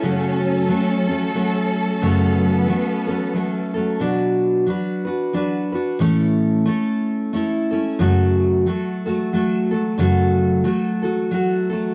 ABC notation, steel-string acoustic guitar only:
X:1
M:3/4
L:1/8
Q:"Swing" 1/4=90
K:F#m
V:1 name="Steel-string acoustic guitar"
[F,,C,F,A,CA]2 [F,A,CA] [F,A,CA] [F,A,CA]2 | [F,,C,F,A,CA]2 [F,A,CA] [F,A,CA] [F,A,CA] [F,A,CA] | [B,,F,DFB]2 [F,DFB] [DFB] [F,DFB] [DFB] | [A,,E,A,CEA]2 [A,CEA]2 [A,CEA] [A,CEA] |
[F,,C,F,A,FA]2 [F,A,FA] [F,A,FA] [F,A,FA] [F,A,FA] | [F,,C,F,A,FA]2 [F,A,FA] [F,A,FA] [F,A,FA] [F,A,FA] |]